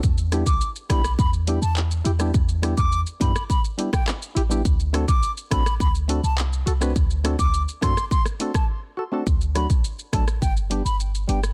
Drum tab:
HH |--x---x---x---x-|--x---x---x---x-|--x---x---x---x-|--x---x---x-----|
SH |xxxxxxxxxxxxxxxx|xxxxxxxxxxxxxxxx|xxxxxxxxxxxxxxxx|xxxxxxxxxxxx----|
CP |------------x---|------------x---|------------x---|----------------|
SD |--r---rr-------r|--r----r---rr---|--r---rr-------r|--r---rr-r-r----|
BD |o--o--o-o-------|o--o--o-o--o----|o--o--o-o-------|o--o--o-o--o----|

HH |--x---x---x---x-|
SH |xxxxxxxxxxxxxxxx|
CP |----------------|
SD |--r---rr-------r|
BD |o--o--o-o-------|